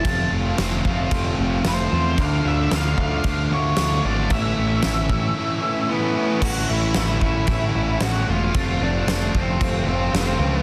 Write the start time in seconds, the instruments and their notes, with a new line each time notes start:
Already playing: lead electric guitar A5
0.04 picked electric bass F1, distorted electric guitar F3 A3 C4 F4, kick, crash
0.31 picked electric bass F1, distorted electric guitar A3 C4 F4
0.58 picked electric bass F1, distorted electric guitar F3 A3 C4 F4, snare, crash
0.85 picked electric bass F1, distorted electric guitar F3 A3 C4 F4, kick
1.11 picked electric bass F1, distorted electric guitar F3 A3 C4, kick, crash
1.16 distorted electric guitar F4
1.38 picked electric bass F1, distorted electric guitar F3 A3 C4 F4
1.65 picked electric bass F1, distorted electric guitar F3 A3 C4, lead electric guitar C5, snare, crash
1.69 distorted electric guitar F4
1.92 picked electric bass E2, distorted electric guitar A3 C4 F4
2.18 picked electric bass D2, distorted electric guitar D3 A3 D4 F4, lead electric guitar F5, kick, crash
2.45 picked electric bass D2, distorted electric guitar A3 D4 F4, lead electric guitar E5
2.71 picked electric bass D2, distorted electric guitar D3 A3 D4 F4, lead electric guitar F5, snare, crash
2.97 picked electric bass D2, distorted electric guitar D3 A3 D4 F4, lead electric guitar F5, kick
3.24 picked electric bass D2, distorted electric guitar D3 A3 D4 F4, kick, crash
3.51 picked electric bass D2, distorted electric guitar A3 D4 F4, lead electric guitar C#5
3.55 distorted electric guitar D3
3.77 picked electric bass D2, distorted electric guitar D3 A3 D4 F4, snare, crash
4.03 picked electric bass G#1, distorted electric guitar A3 D4 F4, lead electric guitar D5
4.29 picked electric bass A1, distorted electric guitar A2 E3 A3 C#4 E4, lead electric guitar E5, kick, crash
4.57 picked electric bass A1, distorted electric guitar A3 C#4 E4
4.81 picked electric bass A1, distorted electric guitar E3 A3 C#4 E4, snare, crash
5.09 picked electric bass A1, distorted electric guitar A2 E3 A3 C#4 E4, kick
5.37 distorted electric guitar A2 E3 A3 C#4 E4
5.63 distorted electric guitar A2 E3 A3 C#4 E4
5.88 distorted electric guitar A2 E3 A3 C#4 E4, lead electric guitar B3
6.15 distorted electric guitar A3 C#4 E4
6.41 picked electric bass A1, distorted electric guitar A2 E3 A3 C#4 E4, lead electric guitar F#4, kick, crash
6.68 picked electric bass A1, distorted electric guitar A3 C#4 E4, lead electric guitar E4
6.94 picked electric bass A1, distorted electric guitar E3 A3 C#4 E4, snare, crash
7.21 picked electric bass A1, distorted electric guitar A3 C#4 E4, lead electric guitar E4, kick
7.47 picked electric bass A1, distorted electric guitar A2 E3 A3 C#4 E4, kick, crash
7.74 picked electric bass A1, distorted electric guitar A3 C#4 E4
7.99 picked electric bass A1, distorted electric guitar A2 E3 A3 C#4 E4, lead electric guitar F#4, snare, crash
8.28 picked electric bass E1, distorted electric guitar A3 C#4 E4, lead electric guitar F4
8.53 picked electric bass F1, distorted electric guitar F3 A3 C4 F4, kick, crash
8.79 picked electric bass F1, distorted electric guitar A3 C4 F4, lead electric guitar D4
9.07 picked electric bass F1, distorted electric guitar F3 A3 C4 F4, snare, crash
9.33 picked electric bass F1, distorted electric guitar A3 C4 F4, lead electric guitar C4, kick
9.59 picked electric bass F1, distorted electric guitar F3 A3 C4 F4, kick, crash
9.86 picked electric bass F1, distorted electric guitar A3 C4 F4, lead electric guitar C4
10.11 picked electric bass F1, distorted electric guitar F3 A3 C4 F4, snare, crash
10.17 lead electric guitar C4
10.39 picked electric bass C#2, distorted electric guitar A3 C4 F4
10.56 lead electric guitar B3